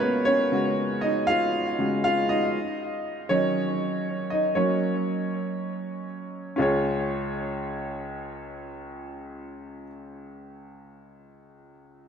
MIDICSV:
0, 0, Header, 1, 2, 480
1, 0, Start_track
1, 0, Key_signature, -5, "major"
1, 0, Tempo, 505051
1, 501, Time_signature, 4, 2, 24, 8
1, 11483, End_track
2, 0, Start_track
2, 0, Title_t, "Upright piano"
2, 0, Program_c, 0, 0
2, 0, Control_c, 0, 64, 127
2, 0, Note_on_c, 0, 49, 50
2, 0, Note_on_c, 0, 56, 41
2, 0, Note_on_c, 0, 58, 58
2, 0, Note_on_c, 0, 61, 61
2, 0, Note_on_c, 0, 65, 83
2, 0, Note_on_c, 0, 66, 55
2, 0, Note_on_c, 0, 70, 69
2, 0, Note_on_c, 0, 73, 100
2, 0, Note_on_c, 0, 77, 104
2, 0, Note_on_c, 0, 85, 61
2, 1, Note_on_c, 0, 71, 80
2, 26, Note_on_c, 0, 59, 58
2, 234, Note_off_c, 0, 71, 0
2, 239, Note_off_c, 0, 73, 0
2, 239, Note_on_c, 0, 73, 81
2, 247, Note_off_c, 0, 59, 0
2, 264, Note_off_c, 0, 61, 0
2, 264, Note_on_c, 0, 61, 56
2, 492, Note_off_c, 0, 49, 0
2, 492, Note_on_c, 0, 49, 48
2, 499, Note_off_c, 0, 56, 0
2, 499, Note_on_c, 0, 56, 46
2, 505, Note_off_c, 0, 66, 0
2, 505, Note_on_c, 0, 66, 54
2, 715, Note_off_c, 0, 49, 0
2, 944, Note_off_c, 0, 61, 0
2, 963, Note_on_c, 0, 75, 78
2, 989, Note_on_c, 0, 63, 68
2, 991, Note_off_c, 0, 73, 0
2, 1019, Note_off_c, 0, 75, 0
2, 1042, Note_off_c, 0, 63, 0
2, 1206, Note_off_c, 0, 77, 0
2, 1206, Note_on_c, 0, 77, 94
2, 1234, Note_off_c, 0, 65, 0
2, 1234, Note_on_c, 0, 65, 58
2, 1659, Note_off_c, 0, 77, 0
2, 1674, Note_off_c, 0, 65, 0
2, 1687, Note_off_c, 0, 56, 0
2, 1690, Note_off_c, 0, 66, 0
2, 1697, Note_on_c, 0, 49, 42
2, 1701, Note_on_c, 0, 56, 39
2, 1705, Note_on_c, 0, 66, 45
2, 1914, Note_off_c, 0, 49, 0
2, 1917, Note_off_c, 0, 56, 0
2, 1918, Note_off_c, 0, 66, 0
2, 1939, Note_on_c, 0, 77, 92
2, 1953, Note_on_c, 0, 65, 68
2, 2170, Note_off_c, 0, 65, 0
2, 2178, Note_on_c, 0, 75, 82
2, 2187, Note_off_c, 0, 77, 0
2, 2195, Note_on_c, 0, 63, 65
2, 2433, Note_off_c, 0, 58, 0
2, 2433, Control_c, 0, 64, 0
2, 2438, Note_off_c, 0, 70, 0
2, 2442, Note_off_c, 0, 85, 0
2, 2582, Control_c, 0, 64, 127
2, 3100, Note_off_c, 0, 75, 0
2, 3109, Note_off_c, 0, 63, 0
2, 3129, Note_on_c, 0, 73, 79
2, 3133, Note_on_c, 0, 51, 50
2, 3140, Note_on_c, 0, 54, 42
2, 3146, Note_on_c, 0, 63, 55
2, 3148, Note_on_c, 0, 61, 56
2, 3455, Note_off_c, 0, 51, 0
2, 3459, Note_off_c, 0, 54, 0
2, 3462, Note_off_c, 0, 63, 0
2, 4065, Note_off_c, 0, 61, 0
2, 4090, Note_on_c, 0, 75, 62
2, 4109, Note_on_c, 0, 63, 52
2, 4123, Note_off_c, 0, 73, 0
2, 4145, Note_off_c, 0, 75, 0
2, 4162, Note_off_c, 0, 63, 0
2, 4326, Note_on_c, 0, 73, 66
2, 4335, Note_on_c, 0, 54, 45
2, 4342, Note_on_c, 0, 58, 43
2, 4345, Note_on_c, 0, 61, 55
2, 4349, Control_c, 0, 64, 0
2, 4506, Control_c, 0, 64, 127
2, 5020, Note_off_c, 0, 54, 0
2, 5024, Note_off_c, 0, 58, 0
2, 5734, Note_off_c, 0, 73, 0
2, 5746, Note_off_c, 0, 61, 0
2, 6236, Note_on_c, 0, 61, 63
2, 6252, Note_on_c, 0, 65, 62
2, 6261, Note_on_c, 0, 37, 63
2, 6270, Note_on_c, 0, 68, 61
2, 6272, Control_c, 0, 64, 0
2, 6290, Note_on_c, 0, 73, 65
2, 6461, Control_c, 0, 64, 127
2, 9345, Note_off_c, 0, 61, 0
2, 9361, Note_off_c, 0, 65, 0
2, 9371, Note_off_c, 0, 37, 0
2, 9380, Note_off_c, 0, 68, 0
2, 9400, Note_off_c, 0, 73, 0
2, 11483, End_track
0, 0, End_of_file